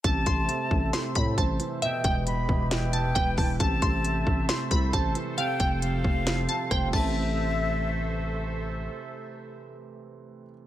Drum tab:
CC |--------|--------|--------|-------x|
HH |xxx-xxxx|xxx-xxxo|xxx-xxxx|xxx-xxx-|
SD |----o---|----o---|----o---|----o-r-|
BD |oo-o-oo-|-o-o--oo|oo-o-oo-|-o-o--oo|

CC |--------|--------|
HH |--------|--------|
SD |--------|--------|
BD |--------|--------|